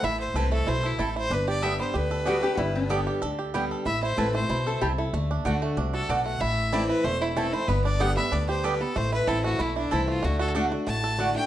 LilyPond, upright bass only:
\new Staff \with { instrumentName = "Upright bass" } { \clef bass \time 4/4 \key a \dorian \tempo 4 = 188 a,,4 c,4 b,,4 a,,4 | g,,2 d,2 | g,,2 d,2 | a,,4 a,,4 b,,4 c,4 |
d,4 d,4 c,4 b,,4 | a,,2 e,,2 | g,,2 d,2 | a,,4 a,,4 b,,4 c,4 |
d,2 a,,2 | }